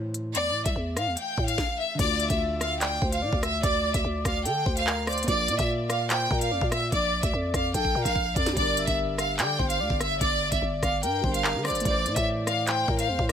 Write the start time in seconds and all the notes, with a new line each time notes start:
Already playing: A2 E3 A3 C5
0.14 closed hi-hat
0.35 E2 D5, closed hi-hat
0.50 A2
0.65 C2 E5, kick, closed hi-hat
0.76 E2
0.96 A2 F5, cross-stick, closed hi-hat
1.07 E2
1.17 G5, closed hi-hat
1.38 A2, kick
1.48 F5, closed hi-hat
1.58 kick, snare
1.78 E5
1.95 D3
1.99 D2 A3 D5, kick, closed hi-hat, crash
2.04 F4
2.19 E5, closed hi-hat
2.30 D2 E5, kick, closed hi-hat
2.61 F5, cross-stick, closed hi-hat
2.81 D5 G5, clap, closed hi-hat
3.02 D2 C5, kick
3.12 F5, closed hi-hat
3.22 A2 D5
3.33 D2, kick
3.43 E5, cross-stick, closed hi-hat
3.63 D2 D5, kick, closed hi-hat
3.84 D5
3.94 D2 E5, kick, closed hi-hat
4.05 D2
4.25 D2 F5, kick, cross-stick, closed hi-hat
4.45 D3 A4 G5, closed hi-hat
4.65 D2 C5, kick
4.76 F5, closed hi-hat
4.87 A#4, clap
5.07 C5 D5, cross-stick, closed hi-hat, open hi-hat
5.12 closed hi-hat
5.18 closed hi-hat
5.23 A#3, closed hi-hat
5.28 A#1 F4 D5, kick, closed hi-hat
5.33 D5
5.48 A#2 D5, closed hi-hat
5.59 A#2 E5, kick, closed hi-hat
5.89 F5, cross-stick, closed hi-hat
6.10 C5 G5, clap, closed hi-hat
6.31 A#2 A#4, kick
6.41 F5, closed hi-hat
6.51 F2 D5
6.61 A#2, kick
6.71 E5, cross-stick, closed hi-hat
6.92 A#1 D5, kick, closed hi-hat
7.13 D5
7.23 D2 E5, kick, closed hi-hat
7.33 F2
7.54 F2 F5, kick, cross-stick, closed hi-hat
7.74 A#1 A4 G5, kick, closed hi-hat
7.85 kick
7.95 A#2 A#4
8.05 A#1 F5, kick, closed hi-hat
8.16 kick
8.36 F2 D5, kick, closed hi-hat
8.46 snare, closed hi-hat
8.53 G1 G3 D5, kick, closed hi-hat
8.57 D4
8.62 A#4
8.77 E5, closed hi-hat
8.87 G1 E5, kick, closed hi-hat
9.18 F5, cross-stick, closed hi-hat
9.39 D3 D5 G5, clap, closed hi-hat
9.59 G1 C5, kick
9.70 F5, closed hi-hat
9.80 D2 D5
9.90 G1, kick
10.00 E5, cross-stick, closed hi-hat
10.21 G1 D5, kick, closed hi-hat
10.42 D5
10.52 G1 E5, kick, closed hi-hat
10.62 G1
10.83 G1 F5, kick, cross-stick, closed hi-hat
11.03 G2 A#4 G5, closed hi-hat
11.21 G1 G3 D4 C5, kick
11.26 A#4
11.34 F5, closed hi-hat
11.44 A#4, clap
11.55 D3
11.64 C5 D5, cross-stick, closed hi-hat, open hi-hat
11.70 G1, closed hi-hat
11.75 closed hi-hat
11.80 A3, closed hi-hat
11.85 A1 E3 D5, kick, closed hi-hat
11.90 C5
12.06 A2 D5, closed hi-hat
12.16 A2 E5, kick, closed hi-hat
12.47 F5, cross-stick, closed hi-hat
12.67 C5 G5, clap, closed hi-hat
12.88 A2 A#4, kick
12.99 F5, closed hi-hat
13.09 E2 C5
13.19 A2, kick